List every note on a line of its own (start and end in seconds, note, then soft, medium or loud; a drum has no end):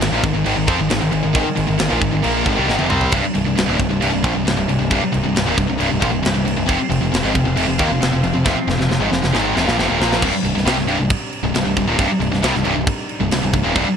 0.00 0.11 G#1 medium
0.00 0.12 G#2 medium
0.00 3.10 D#3 loud
0.00 0.13 D#3 medium
0.00 3.10 G#3 medium
0.00 3.09 D#4 loud
0.00 snare loud
0.00 crash loud
0.11 0.22 A#1 medium
0.11 0.23 A#2 medium
0.11 0.23 F3 loud
0.23 0.33 G#1 medium
0.23 0.33 G#2 medium
0.23 0.34 D#3 medium
0.23 kick loud
0.23 crash medium
0.34 0.45 G#1 medium
0.34 0.44 G#2 medium
0.34 0.45 D#3 medium
0.45 0.56 G#1 medium
0.45 0.56 G#2 loud
0.45 0.56 D#3 loud
0.45 crash loud
0.57 0.67 G#1 medium
0.57 0.68 G#2 medium
0.57 0.68 D#3 medium
0.67 0.78 F2 loud
0.67 0.78 F3 medium
0.67 0.78 C4 loud
0.67 kick medium
0.67 crash medium
0.78 0.90 G#1 medium
0.78 0.88 G#2 medium
0.78 0.88 D#3 medium
0.89 1.01 G#1 medium
0.89 1.00 G#2 medium
0.89 1.00 D#3 medium
0.89 snare loud
0.89 crash medium
1.01 1.12 G#1 medium
1.01 1.10 G#2 medium
1.01 1.10 D#3 medium
1.11 1.24 G#1 medium
1.11 1.21 G#2 medium
1.11 1.22 D#3 medium
1.11 crash medium
1.23 1.35 G#1 medium
1.23 1.33 G#2 medium
1.23 1.33 D#3 medium
1.34 1.46 G#1 loud
1.34 1.44 G#2 loud
1.34 1.45 D#3 loud
1.34 kick loud
1.34 crash medium
1.45 muted distorted electric guitar stroke medium
1.45 muted picked electric bass stroke soft
1.55 1.68 G#1 medium
1.55 1.66 G#2 medium
1.55 1.66 D#3 medium
1.55 crash medium
1.67 1.79 G#1 medium
1.67 1.77 G#2 medium
1.67 1.78 D#3 medium
1.78 1.91 G#1 medium
1.78 1.88 G#2 medium
1.78 1.89 D#3 medium
1.78 snare loud
1.78 crash medium
1.89 2.01 A#1 medium
1.89 2.00 A#2 medium
1.89 2.00 F3 loud
2.01 2.12 G#1 medium
2.01 2.11 G#2 medium
2.01 2.11 D#3 medium
2.01 kick loud
2.01 crash medium
2.12 2.24 G#1 medium
2.12 2.23 G#2 medium
2.12 2.23 D#3 medium
2.23 2.45 A#1 medium
2.23 2.45 A#2 medium
2.23 2.45 F3 medium
2.23 2.45 A#3 loud
2.23 crash loud
2.45 2.57 G#1 loud
2.45 2.56 G#2 medium
2.45 2.55 D#3 medium
2.45 kick medium
2.45 crash medium
2.56 2.68 C2 loud
2.56 2.67 C3 loud
2.56 2.67 G3 loud
2.67 2.79 G#1 medium
2.67 2.78 G#2 loud
2.67 2.79 D#3 loud
2.67 snare medium
2.79 2.90 F1 loud
2.79 2.90 F2 medium
2.79 2.88 C3 loud
2.79 high tom medium
2.90 3.12 C2 medium
2.90 3.12 C3 medium
2.90 3.12 G3 loud
2.90 3.12 C4 loud
2.90 mid tom loud
3.01 floor tom loud
3.12 3.23 C1 medium
3.12 3.22 C2 loud
3.12 3.23 G2 loud
3.12 6.65 C3 medium
3.12 6.64 G3 medium
3.12 4.89 D4 medium
3.12 6.64 D#4 medium
3.12 kick loud
3.12 crash loud
3.23 muted distorted electric guitar stroke medium
3.23 muted picked electric bass stroke soft
3.35 3.46 C1 medium
3.35 3.45 C2 medium
3.35 3.45 G2 medium
3.35 crash medium
3.46 3.57 C1 medium
3.46 3.56 C2 medium
3.46 3.56 G2 medium
3.57 3.68 C1 medium
3.57 3.68 C2 medium
3.57 3.68 G2 medium
3.57 snare loud
3.57 crash medium
3.68 3.79 D#1 loud
3.68 3.79 D#2 medium
3.68 3.79 A#2 loud
3.79 3.90 C1 medium
3.79 3.89 C2 medium
3.79 3.90 G2 medium
3.79 kick medium
3.79 crash medium
3.90 4.01 C1 medium
3.90 4.00 C2 medium
3.90 4.01 G2 medium
4.01 4.12 C1 loud
4.01 4.11 C2 loud
4.01 4.11 G2 loud
4.01 crash medium
4.12 4.23 C1 medium
4.12 4.24 C2 medium
4.12 4.24 G2 medium
4.24 4.34 A#1 loud
4.24 4.35 A#2 medium
4.24 4.35 F3 loud
4.24 kick medium
4.24 crash medium
4.35 4.45 C1 medium
4.35 4.45 C2 medium
4.35 4.46 G2 medium
4.45 4.56 C1 medium
4.45 4.56 C2 medium
4.45 4.56 G2 medium
4.45 snare loud
4.45 crash medium
4.57 4.67 C1 medium
4.57 4.68 C2 medium
4.57 4.68 G2 medium
4.68 4.79 C1 medium
4.68 4.78 C2 medium
4.68 4.77 G2 medium
4.68 crash medium
4.79 4.90 C1 medium
4.79 4.89 C2 medium
4.79 4.89 G2 medium
4.90 5.01 C1 loud
4.90 5.01 C2 loud
4.90 5.01 G2 loud
4.90 6.66 C4 medium
4.90 kick loud
4.90 crash medium
5.02 muted distorted electric guitar stroke medium
5.02 muted picked electric bass stroke soft
5.12 5.25 C1 medium
5.12 5.22 C2 medium
5.12 5.23 G2 medium
5.12 crash medium
5.23 5.35 C1 medium
5.23 5.33 C2 medium
5.23 5.33 G2 medium
5.35 5.46 C1 medium
5.35 5.45 C2 medium
5.35 5.46 G2 medium
5.35 snare loud
5.35 crash medium
5.46 5.57 D#1 loud
5.46 5.56 D#2 medium
5.46 5.57 A#2 loud
5.57 5.68 C1 medium
5.57 5.66 C2 medium
5.57 5.67 G2 medium
5.57 kick loud
5.57 crash medium
5.67 5.79 C1 medium
5.67 5.77 C2 medium
5.67 5.77 G2 medium
5.78 5.90 C1 medium
5.78 5.88 C2 medium
5.78 5.88 G2 loud
5.78 crash medium
5.89 6.01 C1 medium
5.89 5.99 C2 medium
5.89 6.00 G2 medium
6.00 6.12 A#1 loud
6.00 6.11 A#2 medium
6.00 6.11 F3 loud
6.00 kick medium
6.00 crash medium
6.11 6.24 C1 medium
6.11 6.21 C2 medium
6.11 6.22 G2 medium
6.23 6.35 C1 medium
6.23 6.33 C2 medium
6.23 6.33 G2 medium
6.23 snare loud
6.23 crash medium
6.34 6.45 C1 medium
6.34 6.43 C2 medium
6.34 6.44 G2 medium
6.45 6.57 C1 medium
6.45 6.55 C2 medium
6.45 6.55 G2 medium
6.45 crash medium
6.56 6.68 C1 medium
6.56 6.66 C2 medium
6.56 6.67 G2 medium
6.66 6.79 F1 medium
6.66 6.77 F2 loud
6.66 6.78 C3 loud
6.66 10.19 F3 medium
6.66 10.19 C4 medium
6.66 8.44 G4 medium
6.66 10.19 F5 medium
6.66 kick loud
6.66 crash medium
6.78 muted distorted electric guitar stroke medium
6.78 muted picked electric bass stroke soft
6.89 7.00 F1 medium
6.89 7.00 F2 medium
6.89 7.00 C3 medium
6.89 crash medium
7.01 7.12 F1 medium
7.01 7.10 F2 medium
7.01 7.11 C3 medium
7.12 7.23 F1 medium
7.12 7.23 F2 medium
7.12 7.23 C3 medium
7.12 snare loud
7.12 crash medium
7.23 7.34 G#1 loud
7.23 7.33 G#2 loud
7.23 7.33 D#3 loud
7.33 7.46 F1 medium
7.33 7.44 F2 medium
7.33 7.45 C3 medium
7.33 kick loud
7.33 crash medium
7.45 7.56 F1 medium
7.45 7.54 F2 medium
7.45 7.55 C3 medium
7.56 7.67 F1 loud
7.56 7.66 F2 loud
7.56 7.66 C3 loud
7.56 crash loud
7.67 7.79 F1 medium
7.67 7.79 F2 medium
7.67 7.78 C3 medium
7.78 7.89 D#2 loud
7.78 7.89 D#3 loud
7.78 7.90 A#3 loud
7.78 kick medium
7.78 crash medium
7.90 8.00 F1 medium
7.90 7.99 F2 medium
7.90 8.00 C3 medium
8.00 8.12 F1 medium
8.00 8.10 F2 medium
8.00 8.11 C3 medium
8.00 snare loud
8.00 crash medium
8.12 8.23 F1 medium
8.12 8.22 F2 medium
8.12 8.22 C3 medium
8.23 8.33 F1 medium
8.23 8.32 F2 medium
8.23 8.33 C3 medium
8.23 crash medium
8.33 8.44 F1 medium
8.33 8.44 F2 medium
8.33 8.44 C3 medium
8.45 8.56 F1 loud
8.45 8.55 F2 loud
8.45 8.56 C3 loud
8.45 10.22 G#4 medium
8.45 kick loud
8.45 snare medium
8.56 muted distorted electric guitar stroke medium
8.67 8.78 F1 medium
8.67 8.76 F2 medium
8.67 8.77 C3 medium
8.67 snare medium
8.77 8.88 F1 medium
8.77 8.88 F2 medium
8.77 8.88 C3 medium
8.77 snare medium
8.88 8.99 F1 medium
8.88 8.99 F2 medium
8.88 9.00 C3 medium
8.88 snare medium
9.00 9.11 G#1 loud
9.00 9.11 G#2 loud
9.00 9.11 D#3 loud
9.11 9.22 F1 medium
9.11 9.21 F2 medium
9.11 9.22 C3 medium
9.11 snare medium
9.22 9.33 F1 medium
9.22 9.33 F2 medium
9.22 9.33 C3 medium
9.22 snare medium
9.33 9.55 G#1 medium
9.33 9.55 G#2 medium
9.33 9.55 D#3 loud
9.33 9.56 G#3 loud
9.33 snare medium
9.55 9.67 F1 loud
9.55 9.65 F2 loud
9.55 9.66 C3 loud
9.55 snare medium
9.66 9.78 A#1 loud
9.66 9.77 A#2 loud
9.66 9.77 F3 loud
9.66 snare medium
9.77 9.89 F1 medium
9.77 9.87 F2 loud
9.77 9.88 C3 loud
9.77 snare loud
9.88 10.00 D#1 loud
9.88 9.98 D#2 medium
9.88 9.98 A#2 loud
9.99 10.21 A#1 medium
9.99 10.21 A#2 loud
9.99 10.21 F3 loud
9.99 10.22 A#3 loud
9.99 snare loud
10.13 snare loud
10.21 10.33 C1 loud
10.21 10.31 C2 loud
10.21 10.33 G2 loud
10.21 13.97 C3 medium
10.21 13.97 G3 medium
10.21 13.97 D4 medium
10.21 13.97 D#4 loud
10.21 kick loud
10.21 crash loud
10.21 crash medium
10.32 muted distorted electric guitar stroke medium
10.32 muted picked electric bass stroke soft
10.43 10.54 C1 medium
10.43 10.53 C2 medium
10.43 10.54 G2 medium
10.43 crash medium
10.54 10.65 C1 medium
10.54 10.66 C2 medium
10.54 10.64 G2 medium
10.54 snare soft
10.65 10.77 C2 loud
10.65 10.76 C3 medium
10.65 10.77 G3 loud
10.65 snare loud
10.65 crash medium
10.77 10.88 C1 medium
10.77 10.86 C2 medium
10.77 10.87 G2 medium
10.77 snare soft
10.88 10.99 C1 medium
10.88 10.97 C2 medium
10.88 10.98 G2 loud
10.88 crash medium
10.99 11.10 C1 medium
10.99 11.10 C2 medium
10.99 11.11 G2 medium
11.10 kick loud
11.10 crash medium
11.33 crash medium
11.43 11.54 C1 medium
11.43 11.53 C2 medium
11.43 11.53 G2 medium
11.54 11.64 C1 medium
11.54 11.64 C2 medium
11.54 11.65 G2 medium
11.54 snare loud
11.54 crash medium
11.65 11.76 C1 medium
11.65 11.76 C2 medium
11.65 11.76 G2 medium
11.77 11.87 C1 medium
11.77 11.87 C2 medium
11.77 11.87 G2 medium
11.77 kick medium
11.77 crash medium
11.87 11.98 D#1 loud
11.87 11.98 D#2 medium
11.87 11.98 A#2 loud
11.98 12.09 C1 loud
11.98 12.08 C2 loud
11.98 12.09 G2 loud
11.98 kick loud
11.98 crash medium
12.09 muted distorted electric guitar stroke medium
12.09 muted picked electric bass stroke soft
12.20 12.31 C1 medium
12.20 12.30 C2 medium
12.20 12.30 G2 medium
12.20 crash medium
12.31 12.42 C1 medium
12.31 12.43 C2 medium
12.31 12.42 G2 medium
12.31 snare soft
12.42 12.53 C2 medium
12.42 12.53 C3 medium
12.42 12.54 G3 medium
12.42 snare loud
12.42 crash medium
12.54 12.64 C1 medium
12.54 12.63 C2 medium
12.54 12.64 G2 medium
12.54 snare soft
12.64 12.75 C1 medium
12.64 12.75 C2 medium
12.64 12.75 G2 loud
12.64 crash medium
12.76 12.87 C1 medium
12.76 12.88 C2 medium
12.76 12.88 G2 medium
12.87 kick loud
12.87 crash medium
13.09 crash medium
13.20 13.31 C1 medium
13.20 13.30 C2 medium
13.20 13.31 G2 medium
13.31 13.42 C1 medium
13.31 13.42 C2 medium
13.31 13.42 G2 medium
13.31 snare loud
13.31 crash medium
13.43 13.53 C1 medium
13.43 13.52 C2 medium
13.43 13.52 G2 medium
13.53 13.64 C1 medium
13.53 13.63 C2 medium
13.53 13.63 G2 medium
13.53 kick medium
13.53 crash medium
13.63 13.75 D#1 medium
13.63 13.74 D#2 medium
13.63 13.75 A#2 loud
13.74 13.86 C1 medium
13.74 13.84 C2 loud
13.74 13.86 G2 loud
13.74 kick loud
13.74 crash medium
13.86 muted distorted electric guitar stroke medium
13.86 muted picked electric bass stroke soft